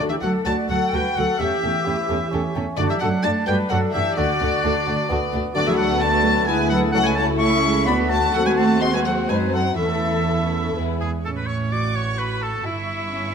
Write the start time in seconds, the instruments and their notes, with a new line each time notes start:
0.00 french horn section A3 D4
0.09 cello section E3, flute section G4, violin section E5, oboe E5
0.21 double bass section D2, cello section F#3, viola section F#3 F#4, violin section F#4 A4 F#5, flute section A4, oboe F#5
0.45 double bass section D2, viola section F#3 F#4, cello section A3, bassoon F#4, violin section F#4 A4 A5, flute section D5, oboe A5
0.69 double bass section D2, viola section F#3 F#4, cello section F#3, violin section F#4 A4 F#5, flute section A4, oboe F#5
0.91 double bass section D2, viola section F#3 F#4, cello section G3, violin section F#4 A4 G5, flute section B4, oboe G5
1.16 double bass section D2, cello section F#3, viola section F#3 F#4, violin section F#4 A4 F#5, flute section A4, oboe F#5
1.39 double bass section E2, cello section E3, french horn section A3 C#4, viola section A3 C#4, bassoon G4, violin section G4 A4 E5, flute section G4, oboe E5
1.63 double bass section E2, viola section A3 C#4, violin section G4 A4
1.85 double bass section E2, viola section A3 C#4, bassoon E4, violin section G4 A4
2.09 double bass section E2, viola section A3 C#4, violin section G4 A4
2.31 double bass section E2, viola section A3 C#4, bassoon C#4, violin section G4 A4
2.55 double bass section E2, viola section A3 C#4, violin section G4 A4
2.77 double bass section F#2, cello section D3, viola section A3 D4, french horn section A3 D4, bassoon D4, violin section F#4 A4 D5, flute section F#4, oboe D5
2.89 cello section E3, flute section G4, oboe E5, violin section E5
3.00 double bass section F#2, cello section F#3, viola section A3 D4, violin section F#4 A4 F#5, flute section A4, oboe F#5
3.23 double bass section F#2, viola section A3 D4, cello section A3, violin section F#4 A4 A5, flute section D5, oboe A5
3.46 double bass section F#2, cello section G3, viola section A3 D4, violin section F#4 A4 G5, flute section B4, oboe G5
3.69 double bass section F#2, cello section F#3, viola section A3 D4, bassoon D4, violin section F#4 A4 F#5, flute section A4, oboe F#5
3.92 double bass section F#2, cello section E3, viola section A3 D4, violin section F#4 A4 E5, flute section G4, oboe E5
4.16 double bass section D2, cello section D3, french horn section A3 F#4, viola section A3 D4, bassoon F#4, flute section F#4, violin section F#4 A4 D5, oboe D5
4.40 double bass section D2, viola section A3 D4, violin section F#4 A4
4.63 double bass section D2, viola section A3 D4, bassoon D4, violin section F#4 A4
4.87 double bass section D2, viola section A3 D4, violin section F#4 A4
5.09 double bass section D2, viola section A3 D4, bassoon B3, violin section F#4 A4
5.33 double bass section D2, viola section A3 D4, violin section F#4 A4
5.54 double bass section D2, cello section D3, bassoon A3, french horn section B3 F#4, viola section B3 F#4, violin section D4 B4 D5, flute section F#4, oboe D5
5.67 cello section E3, flute section G#4, oboe E5, violin section E5
5.77 cello section F#3, flute section A4, violin section F#5, oboe F#5
6.00 viola section A3 D4, cello section A3, violin section F#4 A5, flute section D5, oboe A5
6.25 viola section F#3
6.47 double bass section D2, viola section G#3 E4, cello section G#3, bassoon B3, violin section E4 B4 G#5, french horn section E4, flute section B4, oboe G#5
6.70 cello section F#3, flute section A4, oboe F#5, violin section F#5
6.92 double bass section C#2, cello section F#3, french horn section A3, viola section A3 F#4, bassoon C#4, violin section E4 A4 F#5, flute section A4, oboe F#5
7.03 cello section G#3, flute section B4, oboe G#5, violin section G#5
7.15 cello section A3, flute section C#5, oboe A5, violin section A5
7.38 viola section A3 E4, cello section C#4, bassoon E4, flute section E5, oboe C#6, violin section C#6
7.64 viola section G#3
7.86 double bass section D2, viola section F#3 D4, cello section B3, bassoon F#4, french horn section F#4, violin section F#4 A4 B5, flute section D5, oboe B5
8.09 cello section A3, flute section C#5, oboe A5, violin section A5
8.33 double bass section D#2, cello section F#3, viola section A3 C4, french horn section C4 F#4, violin section F#4 A4 F#5, flute section A4, oboe F#5
8.45 cello section G#3, flute section B4, violin section G#5, oboe G#5
8.57 cello section A3, flute section C5, violin section A5, oboe A5
8.81 viola section G#3, french horn section C4 F#4, cello section C4, violin section C5 C6, flute section D#5, oboe C6
8.93 cello section G#3, flute section B4, oboe G#5, violin section G#5
9.05 cello section F#3, flute section A4, violin section F#5, oboe F#5
9.28 double bass section F#2, viola section F#3, cello section G#3, violin section D#4 G#5, flute section B4, oboe G#5
9.53 cello section F#3, flute section A4, violin section F#5, oboe F#5
9.77 double bass section E2, cello section E3, viola section A3 C#4, french horn section B3 A4, bassoon E4, violin section E4 A4 E5, flute section A4, oboe E5
10.75 double bass section E2, viola section G#3 B3, french horn section B3 G#4, violin section E4 B4
11.01 oboe G#4, violin section G#5
11.24 double bass section A1, cello section A2, viola section C#4, oboe A4, violin section A5 C#6
11.37 oboe B4, violin section B5
11.47 oboe C#5, violin section C#6
11.72 viola section F#4, oboe D5, violin section D6
11.95 oboe C#5, violin section C#6
12.19 oboe B4, violin section B5
12.43 oboe A4, violin section A5
12.65 double bass section G1, cello section G2, viola section E4, oboe E4, violin section E5 C#6
13.12 viola section C#4